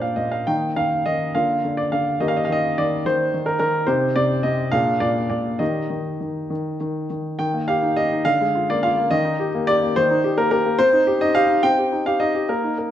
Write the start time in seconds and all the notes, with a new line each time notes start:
Already playing: A#2 A#3 D4 C5 D5
0.02 F5
0.16 A#2 D#5
0.32 F5
0.47 D#3 A#3 D#4 G5
0.76 D#3 F5
1.06 D#3 D#5
1.35 D3 A#3 F4 F5
1.65 D3
1.77 D5
1.92 D3 F5
2.20 D#3 A#3 G4 D#5
2.28 F5
2.37 D#5
2.45 F5
2.49 D#3 D#5
2.78 D#3 D5
3.06 D#3 C5
3.34 D#3
3.46 A#4
3.59 D#3 A#4
3.87 C3 D#4 G4 C5
4.16 C3 D5
4.43 C3 D#5
4.71 A#2 D4 G#4 F5
5.00 A#2 D5
5.30 A#2 D5
5.59 D#3 D#4 G4 D#5
5.90 D#3
6.21 D#3
6.50 D#3
6.81 D#3
7.10 D#3
7.39 D#3 G5
7.54 A#3
7.68 G4 F5
7.82 D#4
7.96 G4 D#5
8.12 D#4
8.25 D3 F5
8.41 G#3
8.55 F4
8.70 A#3 D5
8.83 F4 F5
8.98 A#3
9.11 D#3 D#5
9.25 D#4
9.40 G4
9.55 A#3
9.67 G4 D5
9.83 A#3
9.96 D#3 C5
10.11 D#4
10.24 G4
10.37 A#3 A#4
10.51 G4 A#4
10.66 A#3
10.79 C4 C5
10.93 D#4
11.07 G4
11.21 D#4 D#5
11.35 G4 F5
11.49 D#4
11.63 C4 G5
11.78 G4
11.92 D#4
12.06 G4 F5
12.20 D#4 D#5
12.35 G4
12.49 A#3 A#4
12.64 D#4
12.78 A#4